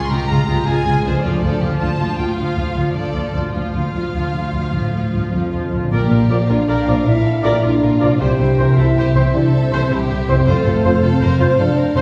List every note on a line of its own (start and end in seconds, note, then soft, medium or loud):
0.00 0.43 C#3 medium
0.09 0.18 C#2 medium
0.09 0.28 G#3 medium
0.09 0.28 F4 medium
0.09 0.29 G4 medium
0.09 0.67 A#5 medium
0.29 0.36 C#2 medium
0.29 0.37 C#2 medium
0.29 0.47 G#3 medium
0.29 0.47 F4 soft
0.29 0.49 F4 medium
0.48 0.56 C#2 medium
0.48 0.66 G#3 medium
0.48 0.66 F4 medium
0.48 0.67 G4 medium
0.65 0.75 C#2 medium
0.65 0.85 G#3 medium
0.65 0.85 F4 medium
0.65 1.23 G#4 medium
0.65 1.06 G#5 medium
0.85 0.93 C#2 medium
0.85 0.95 C#2 medium
0.85 1.03 G#3 soft
0.85 1.03 F4 soft
1.04 1.12 C#2 medium
1.04 1.13 C#2 medium
1.04 4.96 D3 medium
1.04 1.23 G#3 soft
1.04 1.22 F4 soft
1.04 1.24 C5 medium
1.10 5.00 F3 soft
1.15 5.05 A3 soft
1.19 5.09 F4 soft
1.19 1.41 F4 medium
1.23 1.31 D2 medium
1.23 1.32 D2 medium
1.23 1.41 F3 medium
1.23 1.42 F4 soft
1.23 1.81 D5 medium
1.41 1.50 D2 soft
1.41 1.51 D2 soft
1.41 1.61 F3 soft
1.41 1.61 F4 soft
1.41 1.60 A4 medium
1.60 1.69 D2 soft
1.60 1.70 D2 medium
1.60 1.80 F3 soft
1.60 1.80 F4 soft
1.60 1.80 G4 soft
1.79 1.88 D2 medium
1.79 1.89 D2 medium
1.79 1.98 F3 soft
1.79 2.92 F4 medium
1.79 1.98 F4 soft
1.79 2.17 A5 medium
1.99 2.07 D2 soft
1.99 2.18 F3 soft
1.99 2.18 F4 soft
2.18 2.26 D2 soft
2.18 2.37 F3 soft
2.18 2.36 F4 soft
2.18 2.37 G5 medium
2.36 2.45 D2 soft
2.36 2.56 F3 soft
2.36 2.56 F4 soft
2.36 2.94 F5 medium
2.56 2.64 D2 soft
2.56 2.75 F3 soft
2.56 2.74 F4 soft
2.76 2.84 D2 soft
2.76 2.95 F3 soft
2.76 2.95 F4 soft
2.94 3.03 D2 soft
2.94 3.04 D2 soft
2.94 3.14 F3 soft
2.94 3.14 F4 soft
2.94 3.53 A4 soft
2.94 3.33 D5 medium
3.15 3.23 D2 soft
3.15 3.33 F3 soft
3.15 3.32 F4 soft
3.34 3.42 D2 soft
3.34 3.43 D2 soft
3.34 3.53 F3 soft
3.34 3.54 F4 soft
3.34 3.42 D5 medium
3.54 3.63 D2 soft
3.54 3.73 F3 soft
3.54 5.58 F4 soft
3.54 3.73 F4 soft
3.54 5.68 F5 medium
3.74 3.82 D2 soft
3.74 3.83 D2 soft
3.74 3.93 F3 soft
3.74 3.93 F4 soft
3.94 4.02 D2 soft
3.94 4.13 F3 soft
3.94 4.13 F4 soft
4.14 4.69 D2 soft
4.14 4.23 D2 soft
4.14 4.33 F3 soft
4.14 4.33 F4 soft
4.34 4.42 D2 soft
4.34 4.53 F3 soft
4.34 4.53 F4 soft
4.54 4.62 D2 soft
4.54 4.72 F3 soft
4.54 4.72 F4 soft
4.73 4.82 D2 soft
4.73 5.13 A2 soft
4.73 4.92 F3 soft
4.73 4.92 F4 soft
4.93 5.02 D2 soft
4.93 5.12 F3 soft
4.93 5.12 F4 soft
5.12 5.21 D2 soft
5.12 5.32 G2 soft
5.12 5.32 F3 soft
5.12 5.32 F4 soft
5.32 5.41 D2 soft
5.32 5.91 F2 soft
5.32 5.51 F3 soft
5.32 5.51 F4 soft
5.52 5.61 D2 soft
5.52 5.70 F3 soft
5.52 5.70 F4 soft
5.71 5.80 D2 soft
5.71 8.13 A#2 soft
5.71 5.91 F3 soft
5.71 5.91 F4 soft
5.78 8.15 F3 soft
5.83 8.17 D4 soft
5.87 6.09 A#4 soft
5.87 8.19 D5 soft
5.87 6.09 D5 medium
5.92 5.99 A#1 medium
5.92 5.99 A#2 medium
5.92 6.45 A#3 medium
5.92 6.45 G4 medium
5.92 6.46 A#4 medium
5.92 8.17 F5 medium
6.10 6.18 A#1 soft
6.10 6.18 A#2 soft
6.10 6.19 F4 soft
6.10 6.19 A#4 soft
6.30 6.37 A#1 soft
6.30 6.38 A#2 soft
6.30 6.37 F3 soft
6.30 6.37 A#3 soft
6.30 6.37 A#4 soft
6.30 6.37 D5 medium
6.49 6.57 A#1 soft
6.49 6.57 A#2 soft
6.49 7.05 D4 medium
6.49 6.68 F4 soft
6.49 6.57 F4 soft
6.49 6.57 A#4 soft
6.49 7.05 D5 medium
6.68 6.76 A#1 medium
6.68 6.76 A#2 medium
6.68 6.87 G4 medium
6.68 6.86 A#4 medium
6.68 6.86 D5 medium
6.87 6.95 A#1 soft
6.87 6.95 A#2 soft
6.87 6.94 F3 medium
6.87 6.94 A#3 medium
6.87 6.94 F4 soft
6.87 7.06 F4 soft
6.87 6.94 A#4 soft
6.87 6.94 D5 soft
7.05 7.14 A#1 soft
7.05 7.13 A#2 soft
7.05 7.64 E4 medium
7.05 7.14 A#4 soft
7.05 7.25 A#4 medium
7.05 7.64 E5 medium
7.25 7.44 A4 soft
7.43 7.52 A#1 medium
7.43 7.51 A#2 medium
7.43 7.51 F3 soft
7.43 7.50 A#3 medium
7.43 7.62 G4 soft
7.43 7.61 A#4 medium
7.43 7.50 D5 medium
7.43 7.62 D5 medium
7.62 7.71 A#1 soft
7.62 7.71 A#2 soft
7.62 8.20 D4 medium
7.62 7.70 F4 soft
7.62 8.19 F4 soft
7.62 7.70 A#4 soft
7.62 8.22 D5 medium
7.82 7.90 A#1 soft
7.82 7.90 A#2 soft
7.82 7.89 A#4 medium
7.99 8.09 A#1 soft
7.99 8.08 A#2 soft
7.99 10.39 C3 soft
7.99 8.07 F3 medium
7.99 8.07 A#3 medium
7.99 8.08 F4 soft
7.99 8.08 A#4 soft
7.99 8.08 D5 medium
8.07 10.32 C4 soft
8.11 10.43 E4 soft
8.16 8.27 C3 medium
8.16 10.41 C5 soft
8.20 8.27 C2 medium
8.20 8.39 E4 medium
8.20 8.76 G4 medium
8.20 8.38 C5 medium
8.20 10.43 E5 medium
8.20 8.74 G5 medium
8.38 8.46 C2 soft
8.38 8.46 C3 soft
8.38 8.47 E4 soft
8.38 8.57 C5 medium
8.38 8.47 C5 soft
8.57 8.65 C2 soft
8.57 8.65 C3 soft
8.57 8.65 E3 medium
8.57 8.65 C4 medium
8.57 8.67 G4 soft
8.57 8.76 A#4 medium
8.57 8.65 C5 medium
8.57 8.67 C5 soft
8.75 8.85 C2 soft
8.75 8.84 C3 soft
8.75 9.34 E4 medium
8.75 8.85 E4 soft
8.75 8.96 A4 medium
8.75 8.85 C5 soft
8.75 9.31 E5 medium
8.95 9.03 C2 medium
8.95 9.03 C3 medium
8.95 9.15 G4 medium
8.95 9.14 C5 medium
9.15 9.22 C2 soft
9.15 9.22 C3 soft
9.15 9.21 E3 medium
9.15 9.22 C4 medium
9.15 9.23 E4 soft
9.15 9.34 G4 medium
9.15 9.22 C5 medium
9.15 9.24 C5 soft
9.34 9.42 C2 soft
9.34 9.41 C3 soft
9.34 9.53 D4 medium
9.34 9.43 G4 soft
9.34 9.90 A4 medium
9.34 9.42 C5 soft
9.34 9.40 D5 medium
9.52 9.91 C4 medium
9.52 9.89 C5 medium
9.71 9.79 C2 medium
9.71 9.79 C3 medium
9.71 9.78 E3 medium
9.71 9.78 C4 medium
9.71 9.78 C5 medium
9.71 9.90 C5 medium
9.90 9.98 C2 soft
9.90 9.97 C3 soft
9.90 10.46 G3 medium
9.90 9.99 E4 soft
9.90 10.46 G4 medium
9.90 9.99 C5 medium
10.09 10.17 C2 soft
10.09 10.17 C3 soft
10.09 10.17 G4 medium
10.09 10.17 C5 medium
10.27 10.36 C2 soft
10.27 12.02 F2 soft
10.27 10.35 C3 soft
10.27 10.34 E3 medium
10.27 10.34 C4 medium
10.27 10.36 E4 soft
10.27 10.36 C5 soft
10.27 10.35 C5 medium
10.33 12.02 C4 soft
10.38 12.02 F4 soft
10.42 12.02 C5 soft
10.42 10.64 C5 medium
10.46 10.55 F1 medium
10.46 10.54 F2 medium
10.46 11.03 A3 medium
10.46 10.66 F4 medium
10.46 11.02 A4 medium
10.46 12.02 F5 medium
10.65 10.73 F1 soft
10.65 10.73 F2 soft
10.65 10.73 F4 soft
10.65 10.85 A4 medium
10.65 10.73 C5 soft
10.83 10.91 F1 medium
10.83 10.91 F2 soft
10.83 10.91 F3 medium
10.83 10.91 C4 medium
10.83 10.91 A4 soft
10.83 10.91 C5 soft
10.83 11.03 C5 medium
10.83 10.91 C5 medium
11.02 11.10 F1 medium
11.02 11.10 F2 soft
11.02 11.58 C4 medium
11.02 11.10 F4 medium
11.02 11.22 A4 medium
11.02 11.10 C5 soft
11.02 11.61 C5 medium
11.21 11.29 F1 medium
11.21 11.29 F2 medium
11.21 11.41 A#4 medium
11.21 11.39 C5 medium
11.40 11.47 F1 soft
11.40 11.48 F2 soft
11.40 11.48 F3 medium
11.40 11.47 C4 medium
11.40 11.48 F4 soft
11.40 11.48 C5 medium
11.40 11.47 C5 medium
11.40 11.59 C5 medium
11.59 11.66 F1 medium
11.59 11.66 F2 soft
11.59 11.98 D4 medium
11.59 11.67 A4 soft
11.59 11.78 A4 medium
11.59 11.67 C5 soft
11.59 12.02 D5 medium
11.79 11.97 A#4 medium
11.95 12.02 F1 medium
11.95 12.02 F2 medium
11.95 12.02 F3 medium
11.95 12.02 C4 medium
11.95 12.02 A4 medium
11.95 12.02 C5 medium